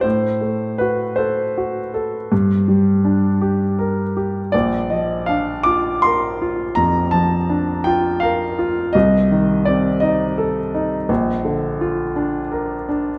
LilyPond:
\new Staff \with { instrumentName = "Grand piano" } { \time 12/8 \key bes \major \tempo 4. = 55 << { c''4 b'8 c''1 r8 | d''8 ees''8 f''8 d'''8 c'''4 bes''8 a''4 g''8 f''4 | ees''4 d''8 ees''1 r8 | } \\ { a,8 a8 fis'8 a'8 fis'8 a'8 g,8 g8 d'8 g'8 bes'8 g'8 | bes,,8 f8 d'8 f'8 bes'8 f'8 f,8 f8 d'8 f'8 bes'8 f'8 | c,8 ees8 c'8 ees'8 a'8 ees'8 bes,,8 d8 f'8 d'8 bes'8 d'8 | } >> }